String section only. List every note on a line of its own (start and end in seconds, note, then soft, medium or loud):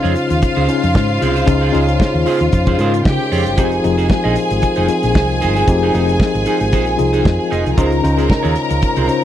0.00 3.01 F4 medium
0.00 3.01 F5 medium
3.06 3.57 G4 medium
3.06 3.57 G5 medium
3.59 7.74 G#4 medium
3.59 7.74 G#5 medium
7.78 9.24 A#4 medium
7.78 9.24 A#5 medium